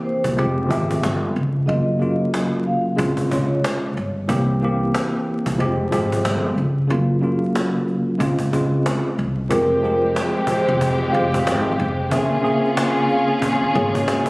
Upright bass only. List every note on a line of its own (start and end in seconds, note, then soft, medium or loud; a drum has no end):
0.25 0.40 C2 medium
0.38 0.71 F1 loud
0.71 1.00 G#1 medium
1.04 1.33 G1 loud
1.36 1.65 C#2 medium
1.69 1.98 F#1 loud
2.99 3.16 C#2 loud
3.32 3.61 C#2 medium
3.97 4.26 G1 medium
4.29 4.90 C2 loud
5.46 5.58 C2 medium
5.60 5.89 F1 loud
5.93 6.22 G#1 medium
6.25 6.55 G1 medium
6.58 6.87 C#2 medium
6.90 7.20 F#1 loud
8.21 8.38 C#2 loud
8.39 muted upright bass stroke soft
8.54 8.83 C#2 medium
9.19 9.48 C2 medium
9.51 10.12 F1 loud
10.68 11.10 F1 medium
11.14 11.44 F1 medium
11.47 11.76 G#1 medium
11.79 12.09 F1 medium
12.12 12.41 A#1 loud
13.62 muted upright bass stroke soft
13.75 14.04 G#1 loud